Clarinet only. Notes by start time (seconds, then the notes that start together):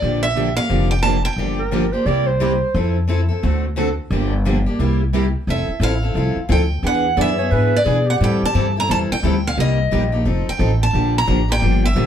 1.59 A#4
1.93 C5
2.06 D5
2.27 C5
7.17 D5
7.38 C#5
7.51 B4
7.85 G#4
8.06 G4